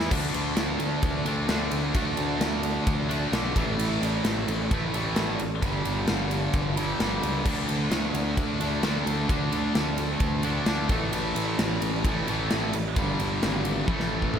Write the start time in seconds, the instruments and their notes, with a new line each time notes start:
Already playing: distorted electric guitar E3 B3 E4
0.00 snare
0.11 picked electric bass D2, distorted electric guitar D3 A3 D4, kick, crash
0.34 picked electric bass D2, ride
0.57 picked electric bass D2, snare, ride
0.79 picked electric bass D2, ride
1.03 picked electric bass D2, kick, ride
1.25 picked electric bass D2, distorted electric guitar D3 A3 D4, ride
1.48 picked electric bass D2, distorted electric guitar D3 A3 D4, snare, ride
1.71 picked electric bass D2, ride
1.95 picked electric bass D2, distorted electric guitar D3 A3 D4, kick, ride
2.17 picked electric bass D2, ride
2.39 picked electric bass D2, snare, ride
2.63 ride
2.87 picked electric bass D2, kick, ride
3.09 distorted electric guitar D3 A3 D4, ride
3.32 picked electric bass B1, distorted electric guitar D3 A3 D4, snare, ride
3.56 picked electric bass A1, distorted electric guitar A2 E3 A3, kick, ride
3.78 picked electric bass A1, ride
4.01 picked electric bass A1, ride
4.24 picked electric bass A1, snare, ride
4.48 picked electric bass A1, ride
4.71 picked electric bass A1, distorted electric guitar A2 E3 A3, kick, ride
4.94 picked electric bass A1, distorted electric guitar A2 E3 A3, ride
5.16 picked electric bass A1, snare, ride
5.39 picked electric bass A1, ride
5.62 picked electric bass G1, distorted electric guitar G2 D3 G3, kick, ride
5.85 picked electric bass G1, ride
6.07 picked electric bass G1, snare, ride
6.31 ride
6.53 picked electric bass G1, kick, ride
6.76 distorted electric guitar G2 D3 G3, ride
7.00 picked electric bass G1, distorted electric guitar G2 D3 G3, snare, ride
7.23 picked electric bass C#2, ride
7.45 picked electric bass D2, distorted electric guitar D3 A3 D4, kick, crash
7.68 picked electric bass D2, ride
7.91 picked electric bass D2, snare, ride
8.14 picked electric bass D2, ride
8.37 picked electric bass D2, kick, ride
8.60 picked electric bass D2, distorted electric guitar D3 A3 D4, ride
8.82 picked electric bass D2, distorted electric guitar D3 A3 D4, snare, ride
9.06 picked electric bass D2, ride
9.28 picked electric bass D2, distorted electric guitar D3 A3 D4, kick, ride
9.52 picked electric bass D2, ride
9.75 picked electric bass D2, snare, ride
9.98 ride
10.20 picked electric bass D2, kick, ride
10.43 distorted electric guitar D3 A3 D4, ride
10.66 picked electric bass D2, distorted electric guitar D3 A3 D4, snare, ride
10.89 picked electric bass A1, distorted electric guitar A2 E3 A3, kick, ride
11.12 picked electric bass A1, ride
11.35 picked electric bass A1, ride
11.59 picked electric bass A1, snare, ride
11.82 picked electric bass A1, ride
12.04 picked electric bass A1, distorted electric guitar A2 E3 A3, kick, ride
12.28 picked electric bass A1, distorted electric guitar A2 E3 A3, ride
12.50 picked electric bass A1, snare, ride
12.73 picked electric bass A1, ride
12.96 picked electric bass G1, distorted electric guitar G2 D3 G3, kick, ride
13.20 picked electric bass G1, ride
13.43 picked electric bass G#1, snare, ride
13.65 ride
13.88 picked electric bass A1, distorted electric guitar A2 E3 A3, kick, high tom
14.00 snare
14.22 kick
14.34 picked electric bass A1, mid tom